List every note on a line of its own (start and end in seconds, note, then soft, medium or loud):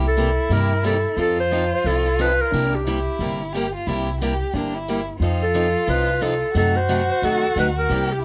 0.00 0.37 C2 medium
0.00 1.18 E4 medium
0.08 0.54 A4 medium
0.17 0.28 C3 medium
0.17 0.29 G3 medium
0.17 0.29 A#3 medium
0.17 0.29 E4 medium
0.17 0.29 G4 medium
0.49 1.04 G2 medium
0.49 0.72 C3 medium
0.49 0.72 G3 medium
0.49 0.72 A#3 medium
0.49 0.72 E4 medium
0.49 0.72 G4 medium
0.49 0.85 A#4 medium
0.83 0.95 C3 medium
0.83 0.95 G3 medium
0.83 0.95 A#3 medium
0.83 0.96 E4 medium
0.83 0.96 G4 medium
0.83 1.16 A4 medium
1.16 1.71 F2 medium
1.16 1.39 F3 medium
1.16 1.39 C4 medium
1.16 1.39 D#4 medium
1.16 2.53 F4 medium
1.16 1.39 A4 medium
1.21 1.39 A4 medium
1.40 1.71 C5 loud
1.51 1.63 F3 medium
1.51 1.63 C4 medium
1.51 1.63 D#4 medium
1.51 1.63 A4 medium
1.75 1.88 C5 medium
1.84 2.39 C2 medium
1.84 2.06 F3 medium
1.84 2.07 C4 medium
1.84 2.07 D#4 medium
1.84 2.23 A4 medium
1.84 2.07 A4 medium
2.19 2.30 F3 medium
2.19 2.30 C4 medium
2.19 2.30 D#4 medium
2.19 2.31 A4 medium
2.19 2.43 B4 medium
2.41 2.77 A#4 medium
2.52 3.06 C2 medium
2.52 2.74 C3 medium
2.52 2.74 G3 medium
2.52 2.74 A#3 medium
2.52 2.86 D4 medium
2.52 2.74 E4 medium
2.52 2.74 G4 medium
2.75 3.42 G4 medium
2.86 2.98 C3 medium
2.86 2.98 G3 medium
2.86 2.98 A#3 medium
2.86 3.54 E4 medium
2.86 2.98 E4 medium
2.86 2.98 G4 medium
3.19 3.73 G1 medium
3.19 3.41 C3 medium
3.19 3.41 G3 medium
3.19 3.41 A#3 medium
3.19 3.42 E4 medium
3.19 3.42 G4 medium
3.53 3.65 C3 medium
3.53 3.65 G3 medium
3.53 3.66 A#3 medium
3.53 3.66 E4 medium
3.53 3.74 G4 medium
3.53 3.66 G4 medium
3.75 3.88 F4 medium
3.87 4.41 C2 medium
3.87 4.09 C3 medium
3.87 4.09 G3 medium
3.87 4.09 A#3 medium
3.87 4.21 E4 medium
3.87 4.09 E4 medium
3.87 4.09 G4 medium
4.21 4.32 C3 medium
4.21 4.33 G3 medium
4.21 4.33 A#3 medium
4.21 4.33 E4 medium
4.21 4.55 G4 medium
4.21 4.33 G4 medium
4.54 5.08 G1 medium
4.54 4.76 C3 medium
4.54 4.76 G3 medium
4.54 4.76 A#3 medium
4.54 4.76 D4 medium
4.54 4.76 E4 medium
4.54 4.76 G4 medium
4.74 5.08 E4 medium
4.88 4.99 C3 medium
4.88 4.99 G3 medium
4.88 5.00 A#3 medium
4.88 5.00 E4 medium
4.88 5.00 G4 medium
5.20 5.74 F2 medium
5.20 5.43 F3 medium
5.20 5.43 C4 medium
5.20 5.43 D#4 medium
5.20 6.51 F4 medium
5.20 5.43 A4 medium
5.43 5.91 A4 medium
5.54 5.66 F3 medium
5.54 5.66 C4 medium
5.54 5.66 D#4 medium
5.54 5.66 A4 medium
5.88 6.42 C2 medium
5.88 6.09 F3 medium
5.88 6.09 C4 medium
5.88 6.10 D#4 medium
5.88 6.10 A4 medium
5.88 6.24 B4 medium
6.21 6.33 F3 medium
6.21 6.33 C4 medium
6.21 6.33 D#4 medium
6.21 6.33 A4 medium
6.21 6.56 A4 medium
6.54 7.09 F#2 medium
6.54 6.77 C3 medium
6.54 6.76 F#3 medium
6.54 6.77 A3 medium
6.54 6.77 D#4 medium
6.54 7.91 F#4 medium
6.54 6.77 F#4 medium
6.54 6.78 A4 medium
6.76 7.10 C5 medium
6.89 7.00 C3 medium
6.89 7.00 F#3 medium
6.89 7.00 A3 medium
6.89 7.01 D#4 medium
6.89 7.01 F#4 medium
7.11 7.26 C5 medium
7.22 7.51 D#2 medium
7.22 7.44 C3 medium
7.22 7.44 F#3 medium
7.22 7.44 A3 medium
7.22 7.44 D#4 medium
7.22 7.44 F#4 medium
7.22 7.57 A4 medium
7.56 7.85 D2 medium
7.56 7.68 C3 medium
7.56 7.68 F#3 medium
7.56 7.68 A3 medium
7.56 7.68 D#4 medium
7.56 7.68 F#4 medium
7.56 7.68 B4 medium
7.79 8.14 A#4 medium
7.89 8.25 C2 medium
7.89 8.11 C3 medium
7.89 8.11 G3 medium
7.89 8.11 A#3 medium
7.89 8.12 E4 medium
7.89 8.22 G4 medium
7.89 8.11 G4 medium
8.12 8.25 G4 medium